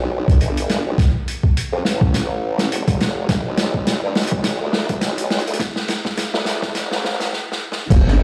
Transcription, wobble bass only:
0.00 0.39 B1 medium
0.41 0.83 G1 medium
0.86 0.96 B1 loud
1.72 1.83 F2 loud
1.85 2.69 A1 loud
2.71 2.85 F1 medium
2.88 3.27 F1 medium
3.29 3.43 G1 medium
3.45 4.00 B1 medium
4.03 4.14 G2 loud
4.16 4.58 B1 loud
4.61 5.00 D2 medium
5.02 5.45 B1 medium
5.47 5.58 D2 medium
6.34 6.44 D2 loud
6.46 6.73 D2 loud
6.75 6.89 F#1 loud
6.91 7.33 A1 loud
7.90 8.04 E1 medium
8.07 8.23 G1 loud

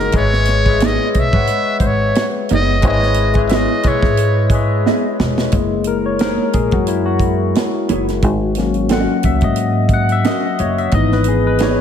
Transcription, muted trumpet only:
0.00 0.16 A#4 medium
0.17 0.87 C#5 loud
0.85 1.12 D#5 loud
1.12 1.21 D#5 medium
1.20 1.78 E5 loud
1.80 1.88 C5 medium
1.87 2.26 C#5 medium
2.55 2.84 D#5 loud
2.88 3.43 D#5 loud
3.48 3.56 E5 medium
3.55 3.89 D#5 loud
3.88 4.54 C#5 medium

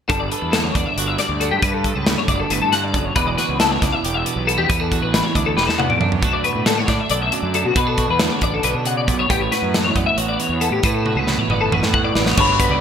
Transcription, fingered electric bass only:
0.10 0.29 G1 loud
0.42 0.71 E2 medium
0.75 0.85 E2 medium
0.96 1.16 G1 medium
1.29 1.49 D2 medium
1.51 1.61 G2 medium
1.62 1.91 G2 medium
1.95 2.14 C#2 medium
2.28 2.47 F#1 medium
2.50 2.60 G1 medium
2.61 2.96 G2 medium
2.94 3.13 G1 medium
3.16 3.35 E1 loud
3.49 3.78 C#2 medium
3.82 3.91 C#2 medium
4.04 4.23 E1 medium
4.36 4.55 B1 medium
4.58 4.68 E2 medium
4.69 4.98 E2 medium
5.02 5.21 A1 medium
5.35 5.54 D2 medium
5.57 5.66 E1 medium
5.67 6.00 E2 medium
6.00 6.19 F#2 medium
6.22 6.41 B1 medium
6.55 6.84 A2 medium
6.88 6.98 A2 medium
7.10 7.29 B1 medium
7.43 7.62 F#2 medium
7.64 7.74 B2 medium
7.75 8.04 B2 medium
8.08 8.28 E2 medium
8.41 8.61 A1 medium
8.64 8.73 B1 medium
8.74 9.09 B2 medium
9.08 9.27 B1 medium
9.30 9.49 A1 loud
9.62 9.91 F#2 medium
9.95 10.05 F#2 medium
10.16 10.36 A1 medium
10.49 10.69 E2 medium
10.71 10.81 A2 medium
10.84 11.13 A2 medium
11.15 11.35 C#2 medium
11.48 11.68 G1 medium
11.70 11.80 A1 medium
11.81 12.16 A2 medium
12.15 12.34 A1 medium
12.37 12.66 G1 loud
12.69 12.81 C#2 medium

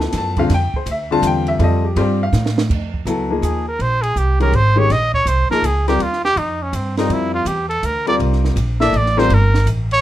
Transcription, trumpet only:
3.43 3.66 G#4 medium
3.68 3.83 A#4 medium
3.82 4.04 C5 loud
4.02 4.20 G#4 medium
4.18 4.41 G4 medium
4.42 4.57 A#4 medium
4.56 4.81 C5 medium
4.79 4.94 C#5 medium
4.92 5.14 D#5 loud
5.14 5.30 C#5 medium
5.28 5.50 C5 medium
5.51 5.67 A#4 medium
5.66 5.88 G#4 medium
5.89 6.04 G4 medium
6.02 6.24 F4 medium
6.25 6.40 G4 loud
6.38 6.64 D#4 medium
6.63 6.77 C#4 medium
6.76 6.98 C4 medium
6.99 7.15 D#4 medium
7.13 7.34 E4 medium
7.34 7.49 F4 medium
7.47 7.69 G4 medium
7.69 7.87 A4 medium
7.85 8.08 A#4 medium
8.08 8.16 D5 medium
8.81 8.99 E5 medium
8.97 9.20 D5 medium
9.19 9.35 C5 medium
9.34 9.69 A#4 medium
9.93 10.01 C#5 loud

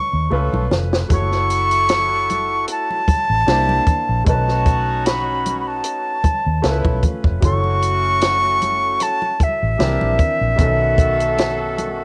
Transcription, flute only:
0.00 0.68 C#6 medium
1.13 2.66 C#6 loud
2.71 4.24 A5 loud
4.28 5.08 A5 loud
5.06 5.59 B5 medium
5.60 5.69 B5 medium
5.68 7.04 A5 medium
7.45 9.04 C#6 loud
9.03 9.45 A5 loud
9.43 12.04 E5 loud

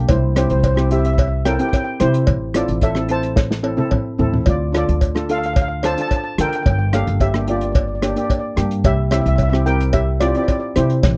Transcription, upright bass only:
0.10 0.48 C2 loud
0.51 1.56 C2 medium
2.01 2.26 C3 medium
2.28 2.67 A1 medium
2.69 3.74 A1 medium
4.19 4.45 A2 medium
4.46 4.85 D2 medium
4.89 5.94 D2 medium
6.38 6.64 D3 medium
6.66 7.04 G1 medium
7.07 8.13 G1 medium
8.57 8.83 G2 medium
8.85 9.23 C2 medium
9.26 10.31 C2 medium
10.77 11.02 C3 medium
11.03 11.17 A1 loud

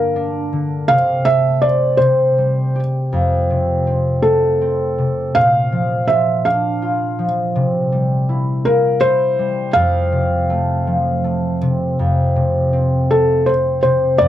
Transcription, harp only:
0.00 0.94 G2 medium
0.00 0.51 D3 medium
0.00 1.31 A#3 medium
0.00 0.15 D4 medium
0.00 0.18 D5 medium
0.16 2.96 D4 medium
0.53 0.94 D3 soft
0.89 1.99 C3 medium
1.25 4.24 A3 soft
1.62 3.60 C5 soft
2.00 3.18 C3 medium
2.38 3.18 G3 soft
2.75 5.11 G4 soft
3.12 5.41 F2 medium
3.50 4.97 C3 soft
3.87 4.61 C4 soft
4.24 5.41 A3 soft
4.61 7.61 C4 soft
4.98 5.41 C3 soft
5.35 7.61 A#2 medium
5.72 7.18 F3 soft
6.09 6.82 F4 soft
6.46 9.26 D4 medium
6.82 8.35 F4 medium
7.19 7.61 F3 soft
7.55 9.81 C3 medium
7.92 9.38 G3 soft
8.29 9.03 E4 medium
8.66 10.56 A#3 medium
9.03 9.82 E4 medium
9.39 9.81 G3 soft
9.76 11.98 F2 medium
10.12 11.61 C3 soft
10.50 11.24 A3 medium
10.87 11.67 F3 medium
11.24 13.10 A3 soft
11.62 12.04 C3 soft
11.99 14.19 F2 medium
12.36 13.83 C3 medium
12.73 13.46 C4 soft
13.10 14.28 A3 soft
13.46 14.28 C4 soft
13.84 14.25 C3 soft
14.20 14.28 F2 medium

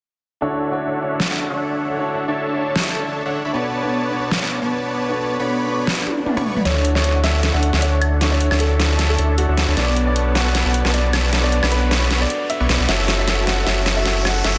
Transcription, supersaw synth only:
0.42 1.28 D4 medium
0.42 1.28 A4 medium
0.42 1.28 C#5 medium
0.42 1.28 E5 medium
0.42 1.28 F#5 loud
1.30 1.47 D4 medium
1.30 1.47 A4 medium
1.30 1.47 C#5 medium
1.30 1.47 E5 medium
1.30 1.47 F#5 medium
1.50 2.25 D4 medium
1.50 2.25 A4 medium
1.50 2.25 C#5 medium
1.50 2.25 E5 medium
1.50 2.25 F#5 medium
2.28 2.93 D4 medium
2.28 2.93 A4 medium
2.28 2.93 C#5 medium
2.28 2.93 E5 medium
2.28 2.93 A5 medium
2.95 3.23 D4 medium
2.95 3.23 A4 medium
2.95 3.23 C#5 medium
2.95 3.23 E5 medium
2.95 3.23 A5 medium
3.25 3.42 D4 medium
3.25 3.42 A4 medium
3.25 3.42 C#5 medium
3.25 3.42 E5 medium
3.25 3.42 F#5 medium
3.45 3.51 D4 medium
3.45 3.51 A4 medium
3.45 3.52 C#5 medium
3.45 3.51 E5 medium
3.45 3.52 B5 loud
3.54 4.40 B3 medium
3.54 4.40 B4 medium
3.54 4.40 C#5 medium
3.54 4.40 D5 medium
3.54 4.40 A5 loud
4.42 4.59 B3 medium
4.42 4.59 B4 medium
4.42 4.59 C#5 medium
4.42 4.59 D5 medium
4.42 4.59 A5 medium
4.62 5.37 B3 medium
4.62 5.37 B4 medium
4.62 5.37 C#5 medium
4.62 5.37 D5 medium
4.62 5.37 A5 medium
5.39 6.05 B3 medium
5.39 6.05 B4 medium
5.39 6.05 C#5 medium
5.39 6.05 D5 medium
5.39 6.05 B5 medium
6.37 6.44 B3 loud
6.37 6.44 B4 medium
6.37 6.44 C#5 medium
6.37 6.44 D5 medium
6.37 6.44 C#6 loud
6.46 6.55 B3 medium
6.46 6.55 B4 medium
6.46 6.55 C#5 medium
6.46 6.55 D5 medium
6.46 6.55 C#6 medium
6.56 6.63 B3 medium
6.56 6.63 B4 medium
6.56 6.63 C#5 medium
6.56 6.63 D5 medium
6.56 6.63 B5 medium
6.65 7.51 D4 medium
6.65 7.51 A4 medium
6.65 7.51 C#5 medium
6.65 7.51 E5 medium
6.65 7.51 F#5 loud
7.54 7.71 D4 medium
7.54 7.71 A4 medium
7.54 7.71 C#5 medium
7.54 7.71 E5 medium
7.54 7.71 F#5 medium
7.73 8.49 D4 medium
7.73 8.49 A4 medium
7.73 8.49 C#5 medium
7.73 8.49 E5 medium
7.73 8.49 F#5 medium
8.51 9.16 D4 medium
8.51 9.16 A4 medium
8.51 9.16 C#5 medium
8.51 9.16 E5 medium
8.51 9.16 A5 medium
9.18 9.46 D4 medium
9.18 9.46 A4 medium
9.18 9.46 C#5 medium
9.18 9.46 E5 medium
9.18 9.46 A5 medium
9.49 9.66 D4 medium
9.49 9.66 A4 medium
9.49 9.66 C#5 medium
9.49 9.66 E5 medium
9.49 9.66 F#5 loud
9.68 9.75 D4 medium
9.68 9.75 A4 medium
9.68 9.75 C#5 medium
9.68 9.75 E5 medium
9.68 9.75 B5 loud
9.77 10.63 B3 medium
9.77 10.63 B4 medium
9.77 10.63 C#5 medium
9.77 10.63 D5 medium
9.77 10.63 A5 loud
10.65 10.82 B3 medium
10.65 10.82 B4 medium
10.65 10.82 C#5 medium
10.65 10.82 D5 medium
10.65 10.82 A5 medium
10.85 11.60 B3 medium
10.85 11.60 B4 medium
10.85 11.60 C#5 medium
10.85 11.60 D5 medium
10.85 11.60 A5 medium
11.63 12.28 B3 medium
11.63 12.28 B4 medium
11.63 12.28 C#5 medium
11.63 12.28 D5 medium
11.63 12.28 B5 medium
12.60 12.67 B3 loud
12.60 12.67 B4 medium
12.60 12.67 C#5 medium
12.60 12.67 D5 medium
12.60 12.67 C#6 loud
12.69 12.78 B3 medium
12.69 12.78 B4 medium
12.69 12.78 C#5 medium
12.69 12.78 D5 medium
12.69 12.78 C#6 medium
12.80 12.87 B3 medium
12.80 12.87 B4 medium
12.80 12.87 C#5 medium
12.80 12.87 D5 medium
12.80 12.87 B5 medium
12.89 13.65 F#4 medium
12.89 13.65 A4 medium
12.89 13.65 E5 medium
13.67 14.43 F#4 medium
13.67 14.43 A4 medium
13.67 14.43 E5 loud
14.45 14.58 F#4 medium
14.45 14.58 A4 medium
14.45 14.58 E5 loud

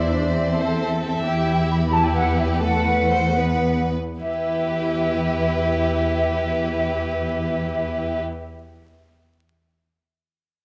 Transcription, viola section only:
0.00 0.12 E4 soft
0.12 0.35 D4 soft
0.34 1.22 C4 soft
1.23 1.89 E4 soft
1.90 2.60 E4 soft
2.61 3.37 A3 soft
3.37 3.95 B3 soft
4.18 8.22 E4 soft

